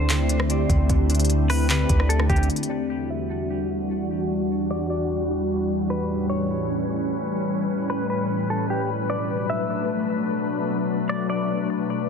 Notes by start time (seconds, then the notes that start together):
Already playing: D2 D3 A3 B3 C4 D4 E4 G4 A4 C5 D5
0.09 D3, clap, closed hi-hat
0.29 D4, closed hi-hat
0.40 cross-stick
0.50 D5, closed hi-hat
0.70 D2 D3, kick, closed hi-hat
0.89 D2 D3, kick, closed hi-hat
1.10 D4, closed hi-hat
1.15 closed hi-hat
1.20 closed hi-hat
1.25 closed hi-hat
1.30 closed hi-hat
1.50 B4, open hi-hat
1.70 D3 B4, clap, closed hi-hat
1.89 D2 D4, kick, closed hi-hat
2.00 cross-stick
2.09 A4 D5, closed hi-hat
2.20 cross-stick
2.29 D2 D3 G4, kick, closed hi-hat
2.36 closed hi-hat
2.43 closed hi-hat
2.49 E2 E3 G3 D4 F#4, closed hi-hat
2.56 closed hi-hat
2.63 closed hi-hat
2.69 D5
3.10 E5
4.71 D5
4.90 D5
5.70 A2 C#4 B4
5.90 B4
6.30 C#5
7.90 B4
8.10 B4
8.50 A4
8.70 G4
8.89 B2 F#3 A3 D4
9.10 D5
9.50 E5
11.09 D5
11.30 D5